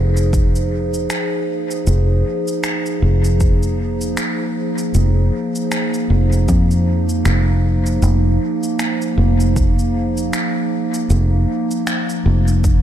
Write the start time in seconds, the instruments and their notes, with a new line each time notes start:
Already playing: fingered electric bass F1, ambient pad F3 A#3 D#4 G#4 C5
0.17 cabasa
0.33 kick, cabasa
0.56 cabasa
0.94 cabasa
1.10 finger snap, cabasa
1.71 cabasa
1.87 fingered electric bass F1, cabasa
2.48 cabasa
2.64 finger snap, cabasa
2.86 cabasa
3.02 fingered electric bass F1
3.24 cabasa
3.40 kick, cabasa
3.63 cabasa
4.01 cabasa
4.17 finger snap, cabasa
4.78 cabasa
4.94 fingered electric bass F1, cabasa
5.56 cabasa
5.72 finger snap, cabasa
5.94 cabasa
6.10 fingered electric bass F1
6.33 cabasa
6.48 fingered electric bass F2, kick, cabasa
6.71 cabasa
7.09 cabasa
7.25 fingered electric bass F1, finger snap, cabasa
7.86 cabasa
8.02 fingered electric bass F1, cabasa
8.63 cabasa
8.79 finger snap, cabasa
9.02 cabasa
9.18 fingered electric bass F1
9.40 cabasa
9.56 kick, cabasa
9.79 cabasa
10.17 cabasa
10.33 finger snap, cabasa
10.94 cabasa
11.10 fingered electric bass F1, cabasa
11.71 cabasa
11.87 finger snap, cabasa
12.09 cabasa
12.26 fingered electric bass F1
12.48 cabasa
12.64 kick, cabasa